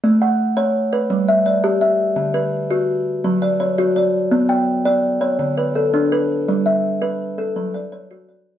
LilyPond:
\new Staff \with { instrumentName = "Kalimba" } { \time 12/8 \key a \mixolydian \tempo 4. = 112 << { r8 fis''4. r8 b'4 e''8 d''4 e''4~ | e''8 b'4. r4. d''8 cis''4 d''4~ | d''8 g''4. r8 cis''4 b'8 a'4 b'4~ | b'8 e''4. r8 a'4 d''8 cis''4 d''4 | } \\ { a4 r8 cis''4 r8 g4 r8 g'4 r8 | d4 r8 fis'4 r8 fis4 r8 fis'4 r8 | b4 r8 d''4 r8 d4 r8 d'4 r8 | g4 r8 b'4 r8 fis4 r8 fis'4 r8 | } >> }